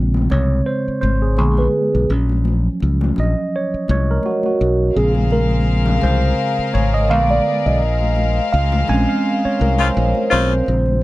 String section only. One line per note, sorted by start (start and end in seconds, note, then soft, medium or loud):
4.94 10.62 G#4 medium
4.94 10.62 A#4 medium
4.94 7.07 C5 medium
4.94 7.07 F5 medium
7.09 7.80 B4 medium
7.09 7.80 D5 medium
7.80 10.63 C5 medium
7.80 10.63 F5 medium